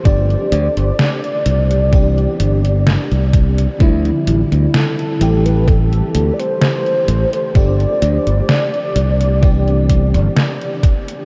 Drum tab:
HH |xxxxxxxxxxxxxxxx|xxxxxxxxxxxxxxxx|xxxxxxxxxxxxxxxx|
SD |----o-------o---|----o-------o---|----o-------o---|
BD |o-------o-----o-|o-------o-------|o-------o-o---o-|